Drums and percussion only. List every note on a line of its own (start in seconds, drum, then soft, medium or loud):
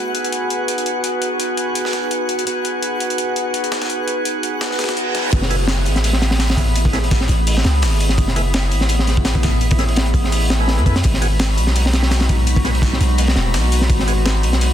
0.15 closed hi-hat medium
0.24 closed hi-hat soft
0.32 closed hi-hat medium
0.50 closed hi-hat medium
0.68 closed hi-hat medium
0.78 closed hi-hat soft
0.86 closed hi-hat medium
1.04 closed hi-hat medium
1.22 closed hi-hat medium
1.40 closed hi-hat medium
1.57 closed hi-hat medium
1.75 closed hi-hat medium
1.85 snare soft
1.93 snare soft
1.93 closed hi-hat medium
2.11 closed hi-hat medium
2.29 closed hi-hat medium
2.39 closed hi-hat soft
2.47 closed hi-hat medium
2.65 closed hi-hat medium
2.83 closed hi-hat medium
3.00 closed hi-hat medium
3.10 closed hi-hat soft
3.18 closed hi-hat medium
3.36 closed hi-hat medium
3.54 closed hi-hat medium
3.64 closed hi-hat soft
3.72 snare medium
3.72 closed hi-hat medium
3.82 snare medium
3.82 closed hi-hat medium
3.90 closed hi-hat medium
4.08 closed hi-hat medium
4.25 closed hi-hat medium
4.43 closed hi-hat medium
4.61 snare loud
4.61 closed hi-hat medium
4.71 snare soft
4.79 snare medium
4.79 closed hi-hat medium
4.84 snare medium
4.84 closed hi-hat medium
4.89 snare loud
4.89 closed hi-hat medium
4.97 closed hi-hat medium
5.15 snare medium
5.15 closed hi-hat medium
5.33 kick loud
5.33 closed hi-hat medium
5.33 open hi-hat medium
5.42 snare medium
5.51 closed hi-hat medium
5.51 open hi-hat medium
5.68 snare loud
5.68 closed hi-hat medium
5.68 open hi-hat medium
5.85 closed hi-hat medium
5.85 open hi-hat medium
5.96 snare soft
5.96 closed hi-hat soft
6.04 closed hi-hat medium
6.04 open hi-hat medium
6.13 snare soft
6.22 snare loud
6.22 closed hi-hat medium
6.22 open hi-hat medium
6.31 snare loud
6.31 open hi-hat medium
6.39 snare loud
6.39 closed hi-hat medium
6.39 open hi-hat medium
6.50 snare loud
6.50 closed hi-hat soft
6.50 open hi-hat medium
6.57 kick medium
6.57 closed hi-hat medium
6.57 open hi-hat medium
6.76 closed hi-hat medium
6.76 open hi-hat medium
6.85 kick medium
6.85 open hi-hat medium
6.93 snare medium
6.93 closed hi-hat medium
7.04 open hi-hat medium
7.11 kick loud
7.11 snare loud
7.11 closed hi-hat medium
7.11 open hi-hat medium
7.21 snare soft
7.28 closed hi-hat medium
7.28 open hi-hat medium
7.47 closed hi-hat medium
7.47 open hi-hat medium
7.57 snare soft
7.64 snare loud
7.64 snare soft
7.64 closed hi-hat medium
7.64 open hi-hat medium
7.82 snare loud
7.82 closed hi-hat medium
7.82 open hi-hat medium
8.00 closed hi-hat medium
8.00 open hi-hat medium
8.09 snare soft
8.09 closed hi-hat soft
8.18 kick loud
8.18 closed hi-hat medium
8.18 open hi-hat medium
8.28 snare soft
8.36 closed hi-hat medium
8.36 open hi-hat medium
8.54 snare loud
8.54 closed hi-hat medium
8.54 open hi-hat medium
8.71 closed hi-hat medium
8.71 open hi-hat medium
8.81 snare medium
8.81 closed hi-hat soft
8.89 closed hi-hat medium
8.89 open hi-hat medium
8.99 snare soft
9.07 snare soft
9.07 closed hi-hat medium
9.07 open hi-hat medium
9.17 kick loud
9.25 snare loud
9.25 closed hi-hat medium
9.25 open hi-hat medium
9.35 kick loud
9.35 closed hi-hat soft
9.43 kick loud
9.43 snare loud
9.43 closed hi-hat medium
9.43 open hi-hat medium
9.61 closed hi-hat medium
9.61 open hi-hat medium
9.71 kick loud
9.71 closed hi-hat soft
9.71 open hi-hat medium
9.79 snare soft
9.79 closed hi-hat medium
9.88 open hi-hat medium
9.96 snare loud
9.96 closed hi-hat medium
9.96 open hi-hat medium
10.06 closed hi-hat soft
10.14 kick medium
10.14 closed hi-hat medium
10.14 open hi-hat medium
10.24 snare soft
10.32 closed hi-hat medium
10.32 open hi-hat medium
10.50 snare loud
10.50 snare soft
10.50 closed hi-hat medium
10.50 open hi-hat medium
10.68 snare loud
10.68 open hi-hat medium
10.78 closed hi-hat soft
10.86 kick medium
10.86 closed hi-hat medium
10.86 open hi-hat medium
10.96 snare loud
10.96 closed hi-hat soft
10.96 open hi-hat medium
11.04 kick loud
11.04 closed hi-hat medium
11.04 open hi-hat loud
11.14 snare soft
11.22 closed hi-hat medium
11.22 open hi-hat medium
11.39 snare loud
11.39 closed hi-hat medium
11.39 open hi-hat medium
11.58 closed hi-hat medium
11.58 open hi-hat medium
11.67 snare soft
11.67 closed hi-hat soft
11.76 closed hi-hat medium
11.76 open hi-hat medium
11.86 snare soft
11.93 snare loud
11.93 closed hi-hat medium
11.93 open hi-hat medium
12.03 snare loud
12.03 open hi-hat medium
12.11 snare loud
12.11 closed hi-hat medium
12.11 open hi-hat medium
12.20 snare loud
12.20 closed hi-hat soft
12.20 open hi-hat medium
12.29 kick loud
12.29 closed hi-hat medium
12.29 open hi-hat medium
12.47 closed hi-hat medium
12.47 open hi-hat medium
12.56 kick loud
12.56 open hi-hat medium
12.64 snare soft
12.64 closed hi-hat medium
12.75 open hi-hat medium
12.82 kick medium
12.82 snare loud
12.82 closed hi-hat medium
12.82 open hi-hat medium
12.93 snare soft
13.01 closed hi-hat medium
13.01 open hi-hat medium
13.18 closed hi-hat medium
13.18 open hi-hat medium
13.28 snare soft
13.28 snare medium
13.36 snare loud
13.36 snare soft
13.36 closed hi-hat medium
13.36 open hi-hat medium
13.54 snare loud
13.54 closed hi-hat medium
13.54 open hi-hat medium
13.72 closed hi-hat medium
13.72 open hi-hat medium
13.81 snare medium
13.81 closed hi-hat soft
13.90 kick loud
13.90 closed hi-hat loud
13.90 open hi-hat medium
13.99 snare medium
14.08 closed hi-hat medium
14.08 open hi-hat medium
14.26 snare loud
14.26 closed hi-hat medium
14.26 open hi-hat medium
14.43 closed hi-hat medium
14.43 open hi-hat medium
14.53 snare medium
14.53 closed hi-hat soft
14.61 closed hi-hat medium
14.61 open hi-hat medium